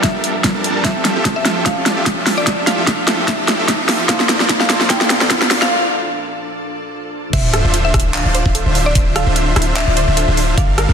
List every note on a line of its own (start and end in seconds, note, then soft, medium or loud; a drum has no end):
0.00 0.81 G2 medium
0.00 7.29 F3 medium
0.00 0.12 G3 medium
0.00 0.81 G3 medium
0.00 0.81 A#3 medium
0.00 0.12 D4 medium
0.00 0.82 D4 medium
0.00 0.82 F4 medium
0.00 0.81 G4 medium
0.00 0.12 A4 medium
0.00 0.83 A4 medium
0.00 0.12 A#4 medium
0.00 0.83 A#4 medium
0.00 0.77 E5 medium
0.00 0.12 F5 medium
0.00 kick loud
0.00 snare medium
0.00 closed hi-hat medium
0.00 riser medium
0.14 0.32 G3 medium
0.14 0.32 D4 medium
0.14 0.32 A4 medium
0.14 0.32 A#4 medium
0.14 0.32 E5 medium
0.24 closed hi-hat medium
0.44 0.52 D4 medium
0.44 0.52 A4 medium
0.44 0.52 A#4 medium
0.44 kick medium
0.44 snare medium
0.44 closed hi-hat medium
0.55 0.82 G3 loud
0.55 0.82 D4 medium
0.55 0.82 A4 medium
0.55 0.82 A#4 medium
0.55 0.82 A5 loud
0.64 closed hi-hat medium
0.82 4.06 F2 medium
0.82 1.42 F3 medium
0.82 1.43 C4 medium
0.82 4.06 E4 medium
0.82 1.43 E4 medium
0.82 1.44 G4 medium
0.82 7.29 A4 medium
0.82 1.44 A4 loud
0.82 0.97 E5 loud
0.82 kick medium
0.82 snare medium
0.82 closed hi-hat medium
1.05 snare medium
1.05 closed hi-hat medium
1.16 1.43 F3 medium
1.16 1.43 F4 medium
1.16 1.43 G4 medium
1.16 1.43 A4 medium
1.16 1.43 E5 loud
1.25 kick loud
1.25 snare medium
1.25 closed hi-hat medium
1.36 1.53 E5 medium
1.43 2.43 F3 medium
1.43 1.74 F3 medium
1.43 2.44 C4 medium
1.43 2.44 E4 medium
1.43 1.74 F4 medium
1.43 1.74 G4 medium
1.43 2.45 G4 medium
1.43 1.74 A4 medium
1.43 1.74 E5 medium
1.43 snare medium
1.43 closed hi-hat medium
1.47 2.45 A4 medium
1.66 1.89 F5 loud
1.66 kick medium
1.66 snare medium
1.66 closed hi-hat medium
1.77 1.94 F3 medium
1.77 1.94 F4 medium
1.77 1.94 G4 medium
1.77 1.94 A4 medium
1.77 1.94 D5 medium
1.86 snare medium
1.86 closed hi-hat medium
1.97 2.15 F3 medium
1.97 2.15 F4 medium
1.97 2.15 G4 medium
1.97 2.15 A4 medium
1.97 2.14 E5 medium
2.06 kick medium
2.06 snare medium
2.06 closed hi-hat medium
2.17 2.44 F3 medium
2.17 2.44 F4 medium
2.17 2.44 G4 medium
2.17 2.44 A4 medium
2.17 2.44 E5 medium
2.26 snare medium
2.26 open hi-hat medium
2.38 2.54 D5 loud
2.45 3.04 F3 medium
2.45 2.75 F3 loud
2.45 3.05 C4 medium
2.45 3.05 E4 medium
2.45 2.75 F4 medium
2.45 2.75 G4 medium
2.45 3.06 G4 medium
2.45 2.75 A4 medium
2.45 3.06 A4 medium
2.45 2.75 E5 loud
2.45 kick medium
2.45 snare medium
2.45 closed hi-hat medium
2.67 2.84 F5 medium
2.67 snare medium
2.67 closed hi-hat medium
2.78 3.05 F3 medium
2.78 3.05 F4 medium
2.78 3.05 G4 medium
2.78 3.05 A4 medium
2.78 3.05 E5 loud
2.87 kick loud
2.87 snare medium
2.87 closed hi-hat medium
3.06 4.06 F3 medium
3.06 3.36 F3 medium
3.06 4.06 C4 medium
3.06 4.07 E4 medium
3.06 3.36 F4 medium
3.06 3.36 G4 medium
3.06 4.07 G4 medium
3.06 3.36 A4 medium
3.06 4.08 A4 medium
3.06 3.36 E5 medium
3.06 snare medium
3.06 closed hi-hat medium
3.28 4.02 E5 loud
3.28 kick loud
3.28 snare medium
3.28 closed hi-hat medium
3.39 3.56 F3 medium
3.39 3.56 F4 medium
3.39 3.57 G4 medium
3.39 3.56 A4 medium
3.39 3.56 D5 medium
3.48 snare medium
3.48 closed hi-hat medium
3.59 3.77 F3 medium
3.59 3.77 F4 medium
3.59 3.77 G4 medium
3.59 3.77 A4 medium
3.59 3.77 E5 loud
3.68 kick medium
3.68 snare medium
3.68 closed hi-hat medium
3.79 4.07 F3 medium
3.79 4.07 F4 medium
3.79 4.07 G4 medium
3.79 4.07 A4 medium
3.79 4.07 E5 medium
3.89 snare medium
3.89 open hi-hat loud
4.07 4.66 A#2 medium
4.07 7.30 A#2 medium
4.07 4.67 A#3 medium
4.07 4.38 A#3 medium
4.07 7.30 D4 medium
4.07 4.67 D4 medium
4.07 4.38 A4 medium
4.07 4.68 A4 medium
4.07 4.38 C5 medium
4.07 4.38 D5 loud
4.07 4.21 F5 loud
4.07 kick loud
4.07 snare medium
4.07 closed hi-hat medium
4.11 4.68 C5 loud
4.20 snare medium
4.29 snare medium
4.29 closed hi-hat medium
4.40 4.67 A#3 medium
4.40 4.67 F4 medium
4.40 4.67 A4 medium
4.40 4.67 C5 medium
4.40 4.67 D5 loud
4.40 snare medium
4.49 kick loud
4.49 snare medium
4.49 closed hi-hat medium
4.60 4.77 F5 medium
4.60 snare medium
4.68 5.68 A#2 medium
4.68 5.68 A#3 medium
4.68 4.98 A#3 medium
4.68 5.69 D4 medium
4.68 4.98 F4 medium
4.68 4.98 A4 medium
4.68 5.69 A4 medium
4.68 4.98 C5 medium
4.68 4.98 D5 medium
4.68 snare loud
4.68 closed hi-hat medium
4.72 5.70 C5 medium
4.81 snare medium
4.90 5.13 G5 loud
4.90 kick medium
4.90 snare loud
4.90 closed hi-hat medium
5.01 5.19 A#3 medium
5.01 5.19 F4 medium
5.01 5.19 A4 medium
5.01 5.19 C5 medium
5.01 5.19 D5 medium
5.01 snare medium
5.10 snare loud
5.10 closed hi-hat medium
5.21 5.39 A#3 medium
5.21 5.39 F4 medium
5.21 5.39 A4 medium
5.21 5.39 C5 medium
5.21 5.39 D5 loud
5.21 snare medium
5.30 kick medium
5.30 snare loud
5.30 closed hi-hat medium
5.42 5.69 A#3 medium
5.42 5.69 F4 medium
5.42 5.69 A4 medium
5.42 5.69 C5 medium
5.42 5.69 D5 medium
5.42 snare medium
5.51 snare loud
5.51 open hi-hat medium
5.62 5.71 F5 medium
5.62 snare medium
7.33 7.62 D1 loud
7.33 10.54 D3 medium
7.33 7.62 D3 loud
7.33 10.54 C4 medium
7.33 7.62 D4 medium
7.33 10.54 E4 medium
7.33 10.93 F4 medium
7.33 7.62 F4 medium
7.33 7.62 C5 medium
7.33 7.38 C5 loud
7.33 7.62 E5 loud
7.33 7.45 E5 loud
7.33 kick loud
7.33 closed hi-hat medium
7.33 crash loud
7.33 sub drop medium
7.54 7.58 A4 loud
7.54 cross-stick medium
7.54 closed hi-hat medium
7.65 7.92 D1 loud
7.65 7.92 D3 medium
7.65 7.92 D4 medium
7.65 7.92 F4 medium
7.65 7.92 C5 medium
7.65 7.92 E5 loud
7.74 7.78 F4 medium
7.74 closed hi-hat medium
7.85 8.01 E5 loud
7.94 8.23 D1 loud
7.94 8.23 D3 medium
7.94 8.23 D4 medium
7.94 8.02 E4 loud
7.94 8.23 F4 medium
7.94 8.23 C5 medium
7.94 kick loud
7.94 cross-stick medium
7.94 closed hi-hat medium
8.00 closed hi-hat medium
8.14 8.19 D4 loud
8.14 8.37 F5 loud
8.14 clap loud
8.14 closed hi-hat medium
8.25 8.43 D1 medium
8.25 8.43 D3 medium
8.25 8.43 D4 medium
8.25 8.43 F4 medium
8.25 8.43 C5 medium
8.25 8.43 D5 medium
8.35 8.42 C5 loud
8.35 closed hi-hat medium
8.46 8.64 D1 loud
8.46 8.63 D3 medium
8.46 8.63 D4 medium
8.46 8.63 F4 medium
8.46 8.63 C5 medium
8.46 8.63 E5 loud
8.46 kick medium
8.55 8.59 A4 medium
8.55 closed hi-hat medium
8.66 8.94 D1 loud
8.66 8.93 D3 medium
8.66 8.93 D4 medium
8.66 8.93 F4 medium
8.66 8.93 C5 medium
8.66 8.93 E5 medium
8.75 8.86 F4 medium
8.75 open hi-hat medium
8.86 9.03 D5 loud
8.95 9.25 D1 loud
8.95 9.24 D3 loud
8.95 9.24 D4 medium
8.95 9.24 F4 medium
8.95 9.24 C5 medium
8.95 9.00 C5 loud
8.95 9.24 E5 loud
8.95 kick loud
8.95 closed hi-hat medium
9.16 9.20 A4 loud
9.16 9.33 F5 medium
9.16 cross-stick medium
9.16 closed hi-hat medium
9.27 9.54 D1 loud
9.27 9.54 D3 medium
9.27 9.54 D4 medium
9.27 9.54 F4 medium
9.27 9.54 C5 medium
9.27 9.54 E5 loud
9.36 9.40 F4 medium
9.36 closed hi-hat medium
9.56 9.85 D1 loud
9.56 9.85 D3 medium
9.56 9.85 D4 medium
9.56 9.64 E4 loud
9.56 9.85 F4 medium
9.56 9.85 C5 medium
9.56 9.85 E5 medium
9.56 cross-stick medium
9.56 closed hi-hat medium
9.62 closed hi-hat medium
9.76 9.81 D4 loud
9.76 10.50 E5 loud
9.76 clap loud
9.76 closed hi-hat medium
9.88 10.06 D1 loud
9.88 10.05 D3 medium
9.88 10.05 D4 medium
9.88 10.05 F4 medium
9.88 10.05 C5 medium
9.88 10.05 D5 medium
9.97 10.04 C5 loud
9.97 closed hi-hat medium
10.08 10.26 D1 loud
10.08 10.25 D3 medium
10.08 10.25 D4 medium
10.08 10.25 F4 medium
10.08 10.25 C5 medium
10.08 10.25 E5 medium
10.17 10.21 A4 medium
10.17 closed hi-hat medium
10.28 10.56 D1 loud
10.28 10.55 D3 medium
10.28 10.55 D4 medium
10.28 10.55 F4 medium
10.28 10.55 C5 medium
10.28 10.55 E5 medium
10.37 10.48 F4 medium
10.37 open hi-hat medium
10.57 10.87 G1 loud
10.57 10.86 G3 loud
10.57 10.86 A4 medium
10.57 10.86 A#4 medium
10.57 10.62 D5 loud
10.57 10.70 F5 loud
10.57 kick loud
10.57 closed hi-hat medium
10.78 10.82 A#4 loud
10.78 cross-stick medium
10.78 closed hi-hat medium
10.89 10.93 G1 loud
10.89 10.93 G3 medium
10.89 10.93 D4 medium
10.89 10.93 A4 medium
10.89 10.93 A#4 medium
10.89 10.93 F5 loud